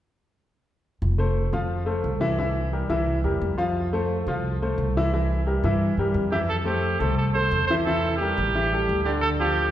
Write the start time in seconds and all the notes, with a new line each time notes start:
1.02 F1
1.18 A3 A4 C5
1.53 F2 F3 F4 F5
1.86 A3 A4 C5
2.04 C2
2.21 E3 E4 E5
2.39 E3 E4 E5
2.73 G3 G4 A#4
2.89 C2 E3 E4 E5
3.24 E2 G3 G4 A#4
3.42 F2
3.58 F3 F4 F5
3.93 A3 A4 C5
4.27 C2 F3 F4 F5
4.62 A3 A4 C5
4.78 C2
4.97 E3 E4 E5
5.13 E3 E4 E5
5.47 G3 G4 A#4
5.64 G2 E3 E4 E5
5.97 G2 G3 G4 A#4
6.14 F2
6.31 E3 E4 G4 E5
6.49 A4
6.65 A3 G4 A4 C5
7.00 C2 A3 A4 C5
7.18 A4
7.34 A3 A4 C5
7.51 E2
7.67 E3 E4 C5 E5
7.85 E3 E4 A4 E5
8.17 G4
8.21 G3 G4 A#4
8.37 A1
8.55 E3 E4 E5
8.72 G3 G4 A4
8.89 D2
9.04 D3 D4 G4 D5
9.21 A4
9.40 F3 F4 G4 A4